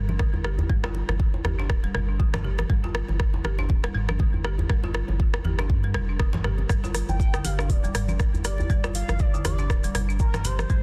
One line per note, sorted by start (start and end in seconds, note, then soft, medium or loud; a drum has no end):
0.00 0.27 G1 medium
0.09 0.18 D4 medium
0.09 high conga loud
0.19 0.32 D3 medium
0.19 kick loud
0.19 cross-stick medium
0.19 muted conga soft
0.19 low conga medium
0.34 0.65 G1 medium
0.34 djembe bass medium
0.44 0.58 G4 medium
0.44 cross-stick medium
0.58 muted conga medium
0.58 djembe bass loud
0.69 1.02 G1 loud
0.69 0.82 G3 medium
0.69 kick loud
0.69 mid tom medium
0.84 0.90 F4 medium
0.84 cross-stick medium
0.84 djembe slap medium
0.84 djembe tone medium
0.95 muted conga soft
1.09 1.40 G1 loud
1.09 cross-stick medium
1.09 high conga medium
1.09 djembe tone medium
1.20 kick loud
1.34 djembe tone loud
1.44 1.71 G1 medium
1.44 1.58 G4 medium
1.44 cross-stick medium
1.44 muted conga soft
1.44 high conga medium
1.44 djembe bass medium
1.59 1.68 D4 medium
1.59 djembe slap medium
1.70 1.89 D1 medium
1.70 kick loud
1.70 cross-stick medium
1.84 1.93 G3 medium
1.84 muted conga soft
1.94 2.27 G1 medium
1.94 2.08 G3 loud
1.94 cross-stick medium
1.94 djembe tone medium
1.94 low conga medium
2.09 2.18 D4 medium
2.19 2.32 D3 medium
2.19 kick loud
2.19 muted conga soft
2.34 2.65 G1 medium
2.34 cross-stick medium
2.34 mid tom medium
2.34 djembe slap loud
2.34 high conga loud
2.44 2.58 G4 medium
2.44 low conga medium
2.58 cross-stick medium
2.58 muted conga medium
2.58 high conga medium
2.69 3.02 G1 loud
2.69 2.82 G3 medium
2.69 kick loud
2.69 mid tom medium
2.84 2.90 F4 medium
2.84 djembe slap medium
2.84 djembe tone medium
2.94 cross-stick medium
2.94 muted conga soft
3.08 3.40 G1 loud
3.08 djembe tone medium
3.08 high conga medium
3.20 kick loud
3.20 cross-stick medium
3.34 djembe tone loud
3.44 3.71 G1 medium
3.44 3.58 G4 medium
3.44 cross-stick medium
3.44 muted conga soft
3.44 high conga medium
3.59 3.69 D4 medium
3.59 djembe slap medium
3.69 3.89 D1 medium
3.69 kick loud
3.69 low conga medium
3.84 3.94 G3 medium
3.84 cross-stick loud
3.84 muted conga soft
3.84 djembe tone medium
3.95 4.27 G1 medium
3.95 4.08 G3 loud
3.95 mid tom medium
4.09 4.19 D4 medium
4.09 cross-stick medium
4.09 high conga loud
4.19 4.32 D3 medium
4.19 kick loud
4.19 muted conga soft
4.19 low conga medium
4.34 4.65 G1 medium
4.34 djembe bass medium
4.44 4.58 G4 medium
4.44 cross-stick medium
4.59 muted conga medium
4.59 djembe bass medium
4.70 5.02 G1 loud
4.70 4.82 G3 medium
4.70 kick loud
4.70 cross-stick medium
4.70 mid tom medium
4.84 4.90 F4 medium
4.84 djembe slap medium
4.84 djembe tone medium
4.94 cross-stick medium
4.94 muted conga soft
5.08 5.40 G1 loud
5.08 djembe tone medium
5.08 high conga medium
5.20 kick loud
5.34 cross-stick medium
5.34 djembe tone medium
5.44 5.71 G1 medium
5.44 5.58 G4 medium
5.44 muted conga soft
5.44 high conga medium
5.44 djembe bass medium
5.59 5.69 D4 medium
5.59 cross-stick medium
5.59 djembe slap medium
5.70 5.96 G2 loud
5.70 kick loud
5.83 5.94 G3 medium
5.83 muted conga soft
5.83 high conga medium
5.94 6.35 F1 medium
5.94 6.08 G3 medium
5.94 cross-stick medium
5.94 djembe tone medium
5.94 low conga medium
6.09 6.19 D4 medium
6.20 6.32 D3 medium
6.20 kick loud
6.20 cross-stick medium
6.20 muted conga soft
6.33 6.65 G1 loud
6.33 mid tom medium
6.33 djembe slap loud
6.33 high conga loud
6.44 6.58 G4 medium
6.44 cross-stick medium
6.44 mid tom medium
6.44 low conga medium
6.58 muted conga soft
6.58 high conga medium
6.69 7.02 G1 loud
6.69 6.82 G3 medium
6.69 kick loud
6.69 cross-stick medium
6.69 mid tom medium
6.69 maracas soft
6.84 6.90 F4 medium
6.84 djembe slap medium
6.84 djembe tone medium
6.84 maracas soft
6.95 cross-stick medium
6.95 open hi-hat medium
6.95 muted conga soft
6.95 maracas medium
7.09 7.40 G1 loud
7.09 7.46 G5 loud
7.09 high conga medium
7.09 djembe tone medium
7.09 maracas soft
7.20 kick loud
7.20 maracas medium
7.34 7.44 D3 medium
7.34 cross-stick medium
7.34 djembe tone medium
7.34 maracas soft
7.44 7.71 G1 medium
7.44 7.58 G4 medium
7.44 7.71 F5 loud
7.44 open hi-hat medium
7.44 muted conga soft
7.44 high conga medium
7.44 maracas medium
7.59 7.69 D4 medium
7.59 cross-stick medium
7.59 djembe slap medium
7.59 maracas soft
7.69 7.89 D1 medium
7.69 8.20 D5 medium
7.69 kick loud
7.69 open hi-hat soft
7.69 low conga medium
7.69 maracas soft
7.83 7.94 G3 medium
7.83 muted conga medium
7.83 djembe tone medium
7.83 maracas soft
7.95 8.27 G1 medium
7.95 8.08 G3 loud
7.95 cross-stick medium
7.95 mid tom medium
7.95 open hi-hat medium
7.95 maracas medium
8.08 8.19 D4 medium
8.08 high conga loud
8.08 maracas soft
8.19 kick loud
8.19 cross-stick medium
8.19 muted conga soft
8.19 low conga medium
8.19 maracas medium
8.34 8.65 G1 medium
8.34 djembe bass medium
8.34 maracas soft
8.44 8.58 G4 medium
8.44 8.91 D5 loud
8.44 cross-stick medium
8.44 open hi-hat medium
8.44 maracas medium
8.58 muted conga soft
8.58 djembe bass medium
8.58 maracas soft
8.70 9.02 G1 loud
8.70 8.82 G3 medium
8.70 kick loud
8.70 mid tom medium
8.70 maracas soft
8.84 8.90 F4 medium
8.84 cross-stick medium
8.84 djembe slap medium
8.84 djembe tone medium
8.84 maracas soft
8.95 9.21 F5 loud
8.95 open hi-hat medium
8.95 muted conga soft
8.95 maracas medium
9.08 9.40 G1 loud
9.08 cross-stick medium
9.08 djembe tone medium
9.08 high conga medium
9.08 maracas soft
9.19 9.44 D5 loud
9.19 kick loud
9.19 maracas soft
9.34 9.44 D3 medium
9.34 djembe tone medium
9.34 maracas soft
9.44 9.71 G1 medium
9.44 9.58 G4 medium
9.44 9.91 D5 medium
9.44 cross-stick medium
9.44 open hi-hat medium
9.44 muted conga soft
9.44 high conga medium
9.44 djembe bass medium
9.44 maracas medium
9.58 9.69 D4 medium
9.58 djembe slap medium
9.58 maracas soft
9.70 9.89 D1 medium
9.70 kick loud
9.70 cross-stick medium
9.70 maracas medium
9.84 9.94 G3 medium
9.84 open hi-hat soft
9.84 muted conga medium
9.84 maracas soft
9.95 10.27 G1 medium
9.95 10.08 G3 loud
9.95 cross-stick medium
9.95 open hi-hat medium
9.95 djembe tone medium
9.95 low conga medium
9.95 maracas medium
10.09 10.19 D4 medium
10.09 maracas soft
10.19 10.46 A#4 medium
10.19 kick loud
10.19 muted conga soft
10.19 maracas soft
10.34 10.65 G1 medium
10.34 cross-stick medium
10.34 mid tom medium
10.34 djembe slap loud
10.34 high conga loud
10.34 maracas soft
10.45 10.58 G4 medium
10.45 10.83 C5 loud
10.45 open hi-hat medium
10.45 low conga medium
10.45 maracas medium
10.59 cross-stick medium
10.59 muted conga medium
10.59 high conga medium
10.59 maracas soft
10.70 10.83 G1 loud
10.70 10.82 G3 medium
10.70 kick loud
10.70 mid tom medium
10.70 maracas medium